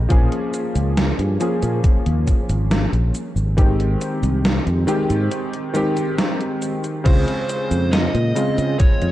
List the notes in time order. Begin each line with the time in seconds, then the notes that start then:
Already playing: F3 A#3 C#4 G#4
0.09 A#1 F3 A#3 C#4 G#4, kick, closed hi-hat, cabasa
0.32 closed hi-hat
0.54 closed hi-hat, cabasa
0.75 C#2, closed hi-hat, cabasa
0.97 snare, closed hi-hat, cabasa
1.19 G2, closed hi-hat
1.40 F3 A#3 C#4 G#4, closed hi-hat, cabasa
1.62 A#2, closed hi-hat, cabasa
1.84 muted fingered electric bass stroke, kick, closed hi-hat, cabasa
2.06 D#2, closed hi-hat
2.27 kick, closed hi-hat, cabasa
2.49 G#1, closed hi-hat, cabasa
2.71 snare, closed hi-hat, cabasa
2.93 A#1, closed hi-hat
3.13 D#3 G#3 C4 G4, closed hi-hat, cabasa
3.36 G#1, cabasa
3.57 D#3 G#3 C4 G4, kick, closed hi-hat, cabasa
3.80 closed hi-hat
4.01 closed hi-hat, cabasa
4.23 C2, closed hi-hat, cabasa
4.45 snare, closed hi-hat, cabasa
4.67 F2, closed hi-hat
4.87 D#3 G#3 C4 G4, closed hi-hat, cabasa
5.10 G#2, closed hi-hat, cabasa
5.31 closed hi-hat, cabasa
5.53 closed hi-hat
5.74 D#3 G#3 C4 G4, closed hi-hat, cabasa
5.97 closed hi-hat, cabasa
6.18 snare, closed hi-hat, cabasa
6.41 closed hi-hat
6.62 closed hi-hat, cabasa
6.84 closed hi-hat, cabasa
7.04 C#2 C#3 G#3 C4 F4 C5, kick, closed hi-hat, crash, cabasa
7.28 closed hi-hat
7.49 closed hi-hat, cabasa
7.71 F2, closed hi-hat, cabasa
7.92 D#5, snare, closed hi-hat, cabasa
8.14 A#2, closed hi-hat
8.35 C#3 G#3 C4 F4, closed hi-hat, cabasa
8.58 C#3, closed hi-hat, cabasa
8.79 C#5, muted fingered electric bass stroke, kick, closed hi-hat, cabasa
9.02 F2, closed hi-hat